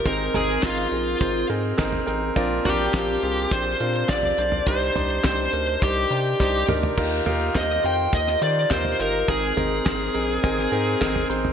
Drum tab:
CC |----------------|----------------|----------------|x---------------|
HH |x-x-x-x-x-x-x-x-|x-x-x-x-x-x-x-x-|x-x-x-x-x-x-----|--x-x-x-x-x-x-x-|
CP |----x-------x---|----x-------x---|----x-----------|----x-------x---|
SD |----o-------o---|----o-------o---|----o-------o---|----o----o--o---|
T2 |----------------|----------------|--------------o-|----------------|
FT |--o----------o--|--o----------o-o|--o------------o|--o----------o--|
BD |o---o---o---o---|o---o---o---o---|o---o---o---o---|o---o---o---o---|

CC |----------------|
HH |x-x-x-x-x-x-x-x-|
CP |----x-------x---|
SD |----o----o--o---|
T2 |----------------|
FT |--o----------o-o|
BD |o---o---o---o---|